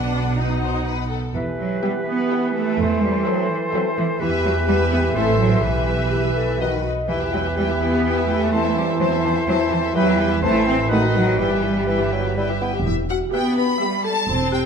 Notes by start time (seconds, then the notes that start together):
Already playing: B1 B2 D4 B4 F#5
0.37 D#4 B4 F#5
0.62 C5
0.86 B4
1.10 A4
1.35 E2 E3 G4 B4
1.59 F#3
1.82 G3 B3 G4 E5 G5
2.07 B3
2.30 B3 G4 E5 G5
2.55 A3
2.79 E2 A4 C5
3.02 G3
3.25 F#3 C4 A4 C5 E5
3.50 E3
3.73 F#3 C4 A4 C5 E5
3.97 E3
4.20 E2 E3 G4 B4 E5
4.44 F#3
4.68 G3 B3 G4 B4 E5
4.91 B3
5.15 A1 A3 C4 E4 A4 C5 E5
5.40 F#3
5.63 B1 E3 G4 B4 E5
6.11 E4 G4
6.36 A4
6.60 D#3 D#4 F#4 B4 D#5
6.85 D#5
7.08 E2 E3 E4 G4 B4 G5
7.21 G4 E5
7.32 F#3 E4 B4 G5
7.45 G4 E5
7.56 G3 E4 G4 B4 G5
7.68 G4 E5
7.80 B3 E4 B4 G5
7.93 G4 E5
8.05 E4 G4 B4 G5
8.17 G4 E5
8.29 A3 E4 B4 G5
8.40 G4 E5
8.52 C4 E4 C5 A5
8.64 E4 A4 E5
8.76 G3 C4 C5 A5
8.88 E4 A4 E5
9.00 F#3 C4 E4 C5 A5
9.11 E4 A4 E5
9.23 E3 C4 C5 A5
9.35 E4 A4 E5
9.47 F#3 C4 E4 C5 A5
9.59 E4 A4 E5
9.71 E3 C4 C5 A5
9.83 E4 A4 E5
9.95 E2 E3 F#3 E4 G4 B4 G5
10.07 E4 G4 E5
10.18 G3 G4 B4 G5
10.31 E4 G4 E5
10.42 A1 E3 A3 C4 E4 C5 A5
10.54 E4 A4 E5
10.66 C4 C5 A5
10.78 E4 A4 E5
10.89 D#3 A3 D#4 F#4 B4 F#5
11.02 F#4 A4 D#5
11.14 F#3 D#4 B4 F#5
11.26 F#4 A4 D#5
11.38 G1 E3 G3 E4 G4 B4 G5
11.50 G4 E5
11.63 E4 B4 G5
11.75 G4 E5
11.87 E3 E4 B4 G5
11.99 G4 E5
12.12 F#3 E4 B4 G5
12.24 G4 E5
12.36 G3 E4 B4 G5
12.49 G4 E5
12.61 B3 E4 B4 G5
12.74 G4 E5
12.86 E1 E4 E5
13.09 F#4 F#5
13.33 B3 G4 E5 G5
13.56 B4 B5
13.80 G3 B3 G4 E5
14.04 A4 A5
14.29 E1 C4
14.52 G4 G5